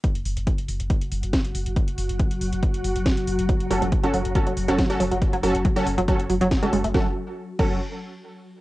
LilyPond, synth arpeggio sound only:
\new Staff \with { instrumentName = "Synth arpeggio sound" } { \clef bass \time 4/4 \key fis \minor \tempo 4 = 139 r1 | r1 | fis16 r16 fis16 fis16 r16 fis16 fis16 r16 fis16 fis16 r16 fis16 fis16 r16 fis16 fis16 | r16 fis16 fis16 r16 fis16 fis16 r16 fis16 fis16 r16 fis16 fis16 r16 gis16 gis16 a16 |
fis16 r4 r16 fis8 r2 | }